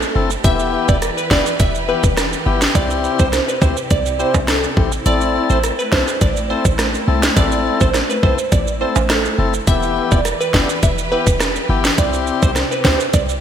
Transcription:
Already playing: string section A3 C4 D4, synth pluck A4
0.02 maracas
0.15 808-style bass F#1, tonewheel organ C4 E4 A4
0.30 maracas
0.44 808-style bass E1, string section E3 E4 G4 B4, tonewheel organ B3 E4 G4, synth pluck E5, kick, closed hi-hat, maracas
0.60 maracas
0.88 808-style bass E1, synth pluck D5, kick, maracas
1.02 cross-stick, closed hi-hat, maracas
1.17 synth pluck B4, maracas
1.31 808-style bass F#1, tonewheel organ B3 E4 G4, synth pluck D5, kick, snare
1.46 maracas
1.60 808-style bass E1, synth pluck E5, kick, closed hi-hat, maracas
1.75 maracas
1.88 tonewheel organ B3 E4 G4, synth pluck B4
2.03 808-style bass E1, kick, maracas
2.17 cross-stick, snare, closed hi-hat, maracas
2.33 maracas
2.46 808-style bass G1, tonewheel organ B3 E4 G4
2.61 snare, maracas
2.75 808-style bass C2, string section C3 C4, tonewheel organ C4 E4 G4, synth pluck D5, kick, closed hi-hat, maracas
2.90 maracas
3.04 maracas
3.19 808-style bass C2, synth pluck C5, kick, maracas
3.33 cross-stick, snare, closed hi-hat, maracas
3.48 synth pluck B4, maracas
3.61 808-style bass D2, tonewheel organ C4 E4 G4, synth pluck C5, kick, maracas
3.77 maracas
3.90 808-style bass C2, synth pluck D5, kick, closed hi-hat, maracas
4.06 maracas
4.19 tonewheel organ C4 E4 G4, synth pluck C5, maracas
4.34 808-style bass C2, kick, high timbale, maracas
4.48 synth pluck A4, cross-stick, snare, closed hi-hat, maracas
4.64 maracas
4.77 808-style bass A1, tonewheel organ C4 E4 G4, kick
4.92 maracas
5.06 808-style bass A1, string section A3, tonewheel organ C4 E4 A4, synth pluck D5, closed hi-hat, maracas
5.21 maracas
5.50 808-style bass A1, synth pluck C5, maracas
5.64 cross-stick, closed hi-hat, maracas
5.79 synth pluck B4, maracas
5.92 808-style bass B1, tonewheel organ C4 E4 A4, synth pluck C5, kick, snare
6.08 maracas
6.21 808-style bass A1, synth pluck D5, kick, closed hi-hat, maracas
6.37 maracas
6.50 tonewheel organ C4 E4 A4, synth pluck C5
6.65 808-style bass A1, kick, maracas
6.79 cross-stick, snare, closed hi-hat, maracas
6.94 maracas
7.08 808-style bass C2, tonewheel organ C4 E4 A4
7.23 snare, maracas
7.36 808-style bass A1, tonewheel organ C4 E4 A4, synth pluck D5, kick, closed hi-hat, maracas
7.52 maracas
7.81 808-style bass A1, synth pluck C5, kick, maracas
7.94 cross-stick, snare, closed hi-hat, maracas
8.10 synth pluck B4, maracas
8.23 808-style bass B1, tonewheel organ C4 E4 A4, synth pluck C5, kick
8.38 maracas
8.52 808-style bass A1, synth pluck D5, kick, closed hi-hat, maracas
8.67 maracas
8.81 tonewheel organ C4 E4 A4, synth pluck C5
8.96 808-style bass A1, high timbale, maracas
9.10 synth pluck A4, cross-stick, snare, closed hi-hat, maracas
9.25 maracas
9.38 808-style bass F#1, tonewheel organ C4 E4 A4
9.54 maracas
9.67 808-style bass E1, string section E3 G4 B4, tonewheel organ B3 E4 G4, synth pluck E5, kick, closed hi-hat, maracas
9.83 maracas
10.11 808-style bass E1, synth pluck D5, kick, maracas
10.25 cross-stick, closed hi-hat, maracas
10.41 synth pluck B4, maracas
10.54 808-style bass F#1, tonewheel organ B3 E4 G4, synth pluck D5, kick, snare
10.69 maracas
10.83 808-style bass E1, synth pluck E5, kick, closed hi-hat, maracas
10.98 maracas
11.11 tonewheel organ B3 E4 G4, synth pluck B4
11.27 808-style bass E1, kick, maracas
11.40 cross-stick, snare, closed hi-hat, maracas
11.56 maracas
11.69 808-style bass G1, tonewheel organ B3 E4 G4
11.84 snare, maracas
11.98 808-style bass C2, string section C3 C4, tonewheel organ C4 E4 G4, synth pluck D5, kick, closed hi-hat, maracas
12.13 maracas
12.27 maracas
12.42 808-style bass C2, synth pluck C5, kick, maracas
12.56 cross-stick, snare, closed hi-hat, maracas
12.71 synth pluck B4, maracas
12.84 808-style bass D2, tonewheel organ C4 E4 G4, synth pluck C5, kick, snare, maracas
13.00 maracas
13.13 808-style bass C2, synth pluck D5, kick, closed hi-hat, maracas
13.29 maracas

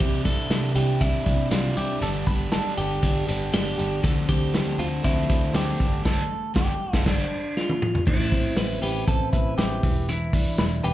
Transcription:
Already playing: clean electric guitar G3
0.00 picked electric bass C2, overdriven electric guitar C3 E3 G3 D4 E4, clean electric guitar C3 G4, kick, closed hi-hat
0.25 picked electric bass C2, overdriven electric guitar G3 D4 E4, clean electric guitar D4 A4, kick, closed hi-hat
0.49 overdriven electric guitar C3 E3 G3 D4 E4, clean electric guitar G3, snare, closed hi-hat
0.74 picked electric bass C2, overdriven electric guitar G3 D4 E4, clean electric guitar D4 G4, closed hi-hat
1.00 picked electric bass C2, overdriven electric guitar E3 G3 D4 E4, clean electric guitar G3 E4, kick, closed hi-hat
1.26 picked electric bass C2, overdriven electric guitar G3 D4 E4, clean electric guitar D4, kick, closed hi-hat
1.51 picked electric bass C2, overdriven electric guitar C3 E3 G3 D4 E4, clean electric guitar G3 F4, snare, closed hi-hat
1.77 picked electric bass C2, overdriven electric guitar G3 D4 E4, clean electric guitar D4 G4, closed hi-hat
2.01 picked electric bass G1, clean electric guitar G3 A4, overdriven electric guitar G3 B3 D4 A4, closed hi-hat
2.27 picked electric bass G1, overdriven electric guitar B3 D4 A4, clean electric guitar G4 B4, kick, closed hi-hat
2.52 overdriven electric guitar G3 B3 D4 A4, clean electric guitar D4 A4, snare, closed hi-hat
2.77 picked electric bass G1, overdriven electric guitar B3 D4 A4, clean electric guitar G4, closed hi-hat
3.03 picked electric bass G1, overdriven electric guitar G3 B3 D4 A4, clean electric guitar D4, kick, closed hi-hat
3.28 picked electric bass G1, overdriven electric guitar B3 D4 A4, clean electric guitar G4, closed hi-hat
3.53 picked electric bass G1, overdriven electric guitar G3 B3 D4 A4, clean electric guitar D4 G4, snare, closed hi-hat
3.78 picked electric bass G1, overdriven electric guitar B3 D4 A4, clean electric guitar G4, closed hi-hat
4.03 picked electric bass D2, clean electric guitar D3 A4, overdriven electric guitar D3 F3 C4 D4 A4, kick, closed hi-hat
4.28 picked electric bass D2, clean electric guitar C4 G4, overdriven electric guitar C4 D4 A4, kick, closed hi-hat
4.54 overdriven electric guitar D3 F3 C4 D4 A4, clean electric guitar A3, snare, closed hi-hat
4.78 picked electric bass D2, clean electric guitar C4 F4, overdriven electric guitar C4 D4 A4, closed hi-hat
5.03 picked electric bass D2, overdriven electric guitar F3 C4 D4 A4, clean electric guitar A3 E4, kick, closed hi-hat
5.29 picked electric bass D2, clean electric guitar C4, overdriven electric guitar C4 D4 A4, kick, closed hi-hat
5.53 picked electric bass D2, overdriven electric guitar D3 F3 C4 D4 A4, clean electric guitar A3 G4, snare, closed hi-hat
5.80 picked electric bass G1, clean electric guitar G3, overdriven electric guitar B3 D4 A4, kick, closed hi-hat
6.05 picked electric bass G1, overdriven electric guitar G3 B3 D4 A4, clean electric guitar A4, kick, snare, crash
6.54 picked electric bass G1, overdriven electric guitar G3 B3 D4 A4, clean electric guitar G4, kick, snare
6.93 picked electric bass G1, overdriven electric guitar B3 D4 A4, kick, snare
7.06 picked electric bass G1, overdriven electric guitar G3 B3 D4 A4, clean electric guitar D4, kick, snare, crash
7.57 clean electric guitar F4, snare
7.70 high tom
7.82 mid tom
7.95 floor tom
8.07 picked electric bass A1, clean electric guitar A2 E4, kick, crash
8.32 clean electric guitar C4, kick, hi-hat pedal, open hi-hat
8.57 picked electric bass A1, clean electric guitar E4 B4, snare, hi-hat pedal, open hi-hat
8.82 picked electric bass A1, clean electric guitar G4 B4, hi-hat pedal, open hi-hat
9.07 picked electric bass A1, clean electric guitar C4 A4, kick, hi-hat pedal, open hi-hat
9.33 picked electric bass A1, clean electric guitar E4 B4, kick, hi-hat pedal, open hi-hat
9.58 picked electric bass A1, clean electric guitar E4 G4, snare, hi-hat pedal, open hi-hat
9.83 picked electric bass E1, clean electric guitar E3, kick, hi-hat pedal, open hi-hat
10.09 clean electric guitar E3 E4, hi-hat pedal, open hi-hat
10.33 clean electric guitar D4, kick, hi-hat pedal, open hi-hat
10.58 picked electric bass E1, clean electric guitar E4 B4, snare, hi-hat pedal, open hi-hat
10.84 picked electric bass E1, clean electric guitar G4 B4, hi-hat pedal, open hi-hat

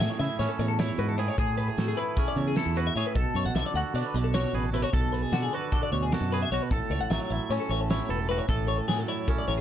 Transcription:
Already playing: clean electric guitar A2 G#4
0.00 clean electric guitar E5, snare, closed hi-hat
0.10 clean electric guitar C#5
0.19 fingered electric bass C#3, clean electric guitar E4 E5, snare, closed hi-hat
0.39 fingered electric bass A2, clean electric guitar C#4 C#5, snare, closed hi-hat
0.49 clean electric guitar A4
0.59 clean electric guitar E2 C#5, fingered electric bass A2, closed hi-hat
0.68 clean electric guitar A4
0.79 clean electric guitar E4 C#5, snare, closed hi-hat
0.98 fingered electric bass G#2, clean electric guitar F#4 B4, closed hi-hat
1.09 clean electric guitar A4
1.18 clean electric guitar A2 G#4 B4, closed hi-hat
1.28 clean electric guitar C#5
1.38 fingered electric bass A2, clean electric guitar A2 G#4, kick, closed hi-hat
1.58 clean electric guitar B4, closed hi-hat
1.68 clean electric guitar G#4
1.78 fingered electric bass A2, clean electric guitar A3 F#4, snare, closed hi-hat
1.88 clean electric guitar G#4
1.97 clean electric guitar E4 B4, closed hi-hat
2.17 clean electric guitar C#4 G#4, kick, closed hi-hat
2.28 clean electric guitar D5
2.36 clean electric guitar E2 C#5, fingered electric bass C#3, closed hi-hat
2.48 clean electric guitar G#4
2.56 clean electric guitar E4 A4, snare, closed hi-hat
2.66 fingered electric bass E2
2.76 clean electric guitar F#4 B4, closed hi-hat
2.87 clean electric guitar E5
2.95 fingered electric bass A2, clean electric guitar A2 G#4 C#5, closed hi-hat
3.07 clean electric guitar B4
3.15 fingered electric bass B1, clean electric guitar B2 A4, kick, closed hi-hat
3.34 fingered electric bass F#2, clean electric guitar C#5, closed hi-hat
3.45 fingered electric bass B1, clean electric guitar F#5
3.55 fingered electric bass B1, clean electric guitar D3 E5, snare, closed hi-hat
3.66 clean electric guitar D5
3.74 fingered electric bass D2, clean electric guitar F#4 F#5, closed hi-hat
3.94 fingered electric bass B2, clean electric guitar D4 D5, closed hi-hat
4.05 clean electric guitar B4
4.14 fingered electric bass B1, clean electric guitar B2 D5, closed hi-hat
4.24 clean electric guitar A4
4.34 clean electric guitar F#4 C#5, snare, closed hi-hat
4.53 fingered electric bass A1, clean electric guitar G#4 B4, closed hi-hat
4.64 clean electric guitar A4
4.73 clean electric guitar B2 E4 B4, closed hi-hat
4.82 clean electric guitar F#4 C#5
4.93 fingered electric bass B1, clean electric guitar B2 A4, kick, closed hi-hat
5.12 clean electric guitar B4, closed hi-hat
5.22 clean electric guitar G#4
5.32 fingered electric bass B2, clean electric guitar D3 F#4, snare, closed hi-hat
5.42 clean electric guitar G#4
5.53 clean electric guitar F#4 B4, closed hi-hat
5.72 clean electric guitar D4 A4, kick, closed hi-hat
5.83 clean electric guitar D5
5.92 fingered electric bass D2, clean electric guitar B2 C#5, closed hi-hat
6.03 clean electric guitar G#4
6.12 clean electric guitar F#4 A4, snare, closed hi-hat
6.21 fingered electric bass F#2
6.32 clean electric guitar G#4 B4, closed hi-hat
6.42 clean electric guitar E5
6.51 fingered electric bass B1, clean electric guitar B2 F#4 C#5, closed hi-hat
6.63 clean electric guitar B4
6.71 fingered electric bass A1, clean electric guitar A2 A4, kick, closed hi-hat
6.90 fingered electric bass C#2, clean electric guitar C#5, closed hi-hat
7.01 fingered electric bass A1, clean electric guitar F#5
7.10 fingered electric bass A1, clean electric guitar F#3 E5, snare, closed hi-hat
7.20 clean electric guitar C#5
7.30 fingered electric bass A1, clean electric guitar E4 E5, closed hi-hat
7.50 fingered electric bass A2, clean electric guitar C#4 C#5, closed hi-hat
7.60 clean electric guitar A4
7.69 fingered electric bass A1, clean electric guitar A2 C#5, closed hi-hat
7.81 clean electric guitar A4
7.90 clean electric guitar E4 C#5, snare, closed hi-hat
8.09 fingered electric bass E1, clean electric guitar A4 B4, closed hi-hat
8.19 clean electric guitar A4
8.29 clean electric guitar A2 F#4 B4, closed hi-hat
8.38 clean electric guitar C#5
8.49 fingered electric bass A1, clean electric guitar A2 A4, kick, closed hi-hat
8.68 clean electric guitar C#5, closed hi-hat
8.78 clean electric guitar A4
8.88 fingered electric bass A2, clean electric guitar F#3 G#4, snare, closed hi-hat
8.98 clean electric guitar A4
9.08 clean electric guitar E4 C#5, closed hi-hat
9.28 clean electric guitar C#4 A4, kick, closed hi-hat
9.38 clean electric guitar D5
9.48 fingered electric bass A1, clean electric guitar A2 C#5, closed hi-hat
9.58 clean electric guitar G#4

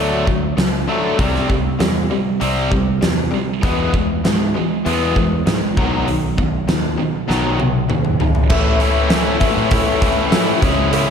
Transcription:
Already playing: fingered electric bass D2, overdriven electric guitar D3 F#3 A3
0.27 overdriven electric guitar D3 F#3, kick
0.57 fingered electric bass C#2, overdriven electric guitar D3 F#3, snare, open hi-hat
0.88 overdriven electric guitar D3 F#3 A3
1.18 fingered electric bass C2, overdriven electric guitar C3 G3 C4, kick, open hi-hat
1.35 snare
1.48 overdriven electric guitar C3 G3, kick
1.79 fingered electric bass E2, overdriven electric guitar C3 G3, snare, open hi-hat
2.10 overdriven electric guitar C3 G3
2.40 fingered electric bass C2, overdriven electric guitar C3 G3 C4, open hi-hat
2.71 overdriven electric guitar C3 G3, kick
3.01 fingered electric bass E2, overdriven electric guitar C3 G3, snare, open hi-hat
3.31 overdriven electric guitar C3 G3
3.62 fingered electric bass E2, overdriven electric guitar E3 G#3 B3, kick, open hi-hat
3.93 overdriven electric guitar E3 G#3, kick
4.24 fingered electric bass G#2, overdriven electric guitar E3 G#3, snare, open hi-hat
4.54 overdriven electric guitar E3 G#3
4.85 fingered electric bass E2, overdriven electric guitar E3 G#3 B3, open hi-hat
5.16 overdriven electric guitar E3 G#3, kick
5.46 fingered electric bass G#2, overdriven electric guitar E3 G#3, snare, open hi-hat
5.77 fingered electric bass B1, overdriven electric guitar B2 D#3 F#3, kick
6.07 overdriven electric guitar B2 D#3, open hi-hat
6.38 overdriven electric guitar B2 D#3, kick
6.68 fingered electric bass D#2, overdriven electric guitar B2 D#3, snare, open hi-hat
6.98 overdriven electric guitar B2 D#3
7.28 fingered electric bass B1, overdriven electric guitar B2 D#3 F#3, snare
7.59 overdriven electric guitar B2 D#3, high tom
7.89 fingered electric bass D#2, overdriven electric guitar B2 D#3, mid tom
8.05 mid tom
8.20 overdriven electric guitar B2 D#3, floor tom
8.35 floor tom
8.50 fingered electric bass A1, overdriven electric guitar A2 E3 A3 C#4 E4, kick, crash, cowbell
8.80 overdriven electric guitar A2 E3 A3 C#4 E4, open hi-hat
9.09 overdriven electric guitar A2 E3 A3 C#4 E4, snare, open hi-hat, cowbell
9.40 overdriven electric guitar A2 E3 A3 C#4 E4, kick, open hi-hat
9.57 fingered electric bass A2
9.70 overdriven electric guitar A2 E3 A3 C#4 E4, kick, open hi-hat, cowbell
10.00 overdriven electric guitar A2 E3 A3 C#4 E4, kick, open hi-hat
10.31 overdriven electric guitar A2 E3 A3 C#4 E4, snare, open hi-hat, cowbell
10.61 fingered electric bass C#2, overdriven electric guitar C#3 G#3 C#4 E4, kick, open hi-hat
10.91 overdriven electric guitar C#3 G#3 C#4 E4, fingered electric bass C#3, open hi-hat, cowbell

